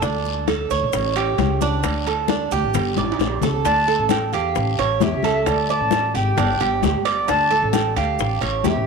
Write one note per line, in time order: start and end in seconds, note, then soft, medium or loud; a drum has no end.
0.02 0.67 D2 loud
0.02 0.46 D4 medium
0.02 high bongo medium
0.02 high conga soft
0.02 long guiro medium
0.02 maracas medium
0.25 high conga soft
0.25 maracas soft
0.48 0.70 A4 medium
0.48 high bongo medium
0.48 high conga medium
0.48 high timbale medium
0.48 short guiro medium
0.48 maracas soft
0.70 0.81 D2 loud
0.70 1.15 C#5 medium
0.70 high bongo soft
0.70 high conga soft
0.70 short guiro medium
0.70 maracas medium
0.82 0.93 A#1 medium
0.93 1.36 A1 loud
0.93 high bongo medium
0.93 high conga soft
0.93 high timbale medium
0.93 long guiro medium
0.93 maracas medium
1.15 1.60 G4 medium
1.15 high bongo soft
1.15 high conga soft
1.15 high timbale loud
1.15 maracas soft
1.38 1.81 C#2 loud
1.38 high bongo medium
1.38 low bongo medium
1.38 high conga medium
1.38 high timbale medium
1.38 short guiro medium
1.38 maracas soft
1.61 2.06 D4 medium
1.61 high bongo soft
1.61 high conga medium
1.61 short guiro medium
1.61 maracas medium
1.83 2.49 D2 medium
1.83 high bongo medium
1.83 high conga soft
1.83 high timbale medium
1.83 long guiro medium
1.83 maracas medium
2.06 2.29 A4 medium
2.06 high conga soft
2.06 high timbale medium
2.06 maracas soft
2.28 2.51 D4 medium
2.28 high bongo medium
2.28 high conga medium
2.28 short guiro medium
2.28 maracas soft
2.51 2.63 D2 loud
2.51 2.96 G4 medium
2.51 high bongo soft
2.51 high conga soft
2.51 short guiro medium
2.51 maracas medium
2.63 2.74 A1 medium
2.74 2.96 G1 loud
2.74 high bongo medium
2.74 high conga soft
2.74 low conga medium
2.74 high timbale medium
2.74 long guiro medium
2.74 maracas medium
2.96 3.18 A1 medium
2.96 3.42 D5 medium
2.96 high bongo soft
2.96 high conga medium
2.96 high timbale medium
2.96 maracas soft
3.12 high timbale medium
3.19 3.40 A#1 medium
3.19 high bongo loud
3.19 short guiro medium
3.19 maracas soft
3.27 low timbale medium
3.41 3.63 C#2 medium
3.41 3.65 A4 medium
3.41 low bongo medium
3.41 low conga medium
3.41 low timbale medium
3.41 short guiro medium
3.41 maracas medium
3.64 3.97 D2 medium
3.64 3.88 D4 medium
3.64 4.07 A5 loud
3.64 high bongo medium
3.64 high conga soft
3.64 high timbale medium
3.64 long guiro medium
3.64 maracas medium
3.87 4.32 A4 medium
3.87 high bongo soft
3.87 high conga soft
3.87 maracas soft
3.99 4.32 A1 medium
4.09 4.34 G5 loud
4.09 high bongo medium
4.09 high conga loud
4.09 high timbale medium
4.09 low timbale medium
4.09 short guiro medium
4.09 maracas medium
4.32 4.55 E2 medium
4.32 4.78 G4 medium
4.32 4.78 F5 medium
4.32 high bongo soft
4.32 high conga soft
4.32 high timbale medium
4.32 short guiro medium
4.32 maracas soft
4.55 4.78 A1 loud
4.55 high bongo medium
4.55 high conga soft
4.55 long guiro medium
4.55 maracas medium
4.78 5.00 A1 medium
4.78 5.01 C#5 medium
4.78 high bongo soft
4.78 high conga soft
4.78 high timbale loud
4.78 maracas soft
5.00 5.12 E2 loud
5.00 5.24 G4 medium
5.00 5.48 E5 medium
5.00 high bongo soft
5.00 low bongo medium
5.00 high conga medium
5.00 low timbale medium
5.00 short guiro medium
5.00 maracas medium
5.13 5.46 C#2 medium
5.23 5.68 A4 medium
5.23 high conga medium
5.23 high timbale medium
5.23 short guiro medium
5.23 maracas soft
5.46 5.79 D2 loud
5.46 5.72 D5 loud
5.46 high bongo medium
5.46 high conga soft
5.46 high timbale medium
5.46 long guiro medium
5.46 maracas medium
5.69 6.14 D5 medium
5.69 6.15 A5 loud
5.69 high bongo soft
5.69 high conga soft
5.69 maracas soft
5.81 6.13 A1 medium
5.91 high bongo medium
5.91 high conga medium
5.91 high timbale medium
5.91 low timbale medium
5.91 short guiro medium
5.91 maracas medium
6.14 6.36 G#1 loud
6.14 6.37 G4 medium
6.14 7.02 G5 loud
6.14 high bongo soft
6.14 high conga soft
6.14 short guiro medium
6.14 maracas soft
6.37 6.59 G1 loud
6.37 6.60 D4 medium
6.37 high bongo medium
6.37 high conga soft
6.37 low conga medium
6.37 high timbale loud
6.37 long guiro medium
6.37 maracas medium
6.60 6.82 G1 medium
6.60 7.04 G4 medium
6.60 high bongo soft
6.60 high conga soft
6.60 high timbale medium
6.60 maracas soft
6.83 6.94 D2 loud
6.83 high bongo soft
6.83 low bongo medium
6.83 high conga medium
6.83 low timbale medium
6.83 short guiro medium
6.83 maracas medium
6.95 7.27 G1 medium
7.05 7.27 D5 medium
7.05 high conga soft
7.05 high timbale loud
7.05 short guiro medium
7.05 maracas soft
7.28 7.61 D2 medium
7.28 7.50 D4 medium
7.28 7.71 A5 loud
7.28 high bongo medium
7.28 high conga soft
7.28 high timbale medium
7.28 long guiro medium
7.28 maracas medium
7.51 7.95 A4 medium
7.51 high bongo soft
7.51 high conga soft
7.51 maracas soft
7.62 7.95 A1 medium
7.73 7.94 G5 medium
7.73 high bongo medium
7.73 high conga loud
7.73 high timbale medium
7.73 low timbale medium
7.73 short guiro medium
7.73 maracas medium
7.96 8.18 D2 loud
7.96 8.40 G4 medium
7.96 8.39 F5 medium
7.96 high bongo soft
7.96 high conga soft
7.96 high timbale medium
7.96 short guiro medium
7.96 maracas soft
8.19 8.41 A1 loud
8.19 high bongo medium
8.19 high conga soft
8.19 long guiro medium
8.19 maracas medium
8.41 8.63 A1 medium
8.41 8.63 C#5 medium
8.41 high bongo soft
8.41 high conga soft
8.41 high timbale loud
8.41 maracas soft
8.64 8.75 E2 loud
8.64 8.86 G4 medium
8.64 high bongo soft
8.64 low bongo loud
8.64 high conga medium
8.64 low timbale medium
8.64 short guiro medium
8.64 maracas medium
8.69 8.87 E5 medium
8.76 8.87 A1 medium